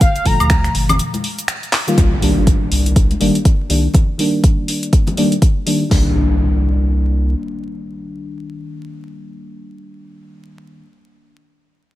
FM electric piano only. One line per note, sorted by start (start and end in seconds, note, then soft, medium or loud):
0.24 1.21 A#2 medium
0.24 1.21 D3 medium
0.24 1.22 F3 medium
0.24 1.22 A3 loud
1.87 2.11 D#3 loud
1.87 2.11 G3 medium
1.87 2.11 A#3 medium
1.87 2.12 F4 loud
2.21 3.18 D#3 medium
2.21 3.18 G3 medium
2.21 3.18 A#3 medium
2.21 3.19 D4 medium
3.20 3.37 D#3 medium
3.20 3.37 G3 medium
3.20 3.37 A#3 medium
3.20 3.38 D4 loud
3.69 3.86 D#3 medium
3.69 3.86 G3 medium
3.69 3.87 A#3 medium
3.69 3.87 D4 medium
4.18 5.14 D#3 medium
4.18 5.15 G3 medium
4.18 5.15 A#3 medium
4.18 5.16 D4 medium
5.17 5.34 D#3 loud
5.17 5.34 G3 medium
5.17 5.34 A#3 medium
5.17 5.34 D4 loud
5.66 5.83 D#3 medium
5.66 5.83 G3 medium
5.66 5.83 A#3 medium
5.66 5.84 D4 medium
5.90 10.82 D#3 medium
5.90 10.83 G3 medium
5.90 10.84 A#3 medium
5.90 10.85 D4 medium